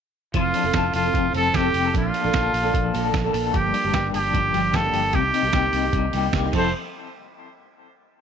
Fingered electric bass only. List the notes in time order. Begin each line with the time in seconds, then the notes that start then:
0.35 F1
0.64 F1
0.74 F1
0.94 F1
1.14 F1
1.33 F1
1.54 F1
1.73 F1
1.94 A#1
2.24 A#1
2.34 A#1
2.53 A#1
2.75 A#1
2.94 A#1
3.14 A#1
3.34 A#1
3.54 G1
3.84 G1
3.94 G1
4.15 G1
4.34 G1
4.55 G1
4.74 G1
4.93 G1
5.14 C2
5.43 C2
5.53 C2
5.73 C2
5.93 C2
6.13 C2
6.33 C2
6.53 F1